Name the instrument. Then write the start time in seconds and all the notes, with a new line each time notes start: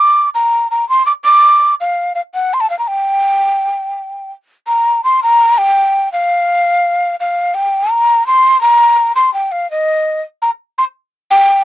quena
Already playing: D6
0.35 A#5
0.71 A#5
0.89 C6
1.06 D6
1.25 D6
1.80 F5
2.15 F5
2.34 F#5
2.54 C6
2.60 A5
2.70 F5
2.79 A#5
2.88 G5
4.67 A#5
5.04 C6
5.23 A#5
5.58 G5
6.12 F5
7.20 F5
7.54 G5
7.91 A#5
8.27 C6
8.61 A#5
9.16 C6
9.34 G5
9.52 F5
9.71 D#5
10.42 A#5
10.78 C6
11.31 G5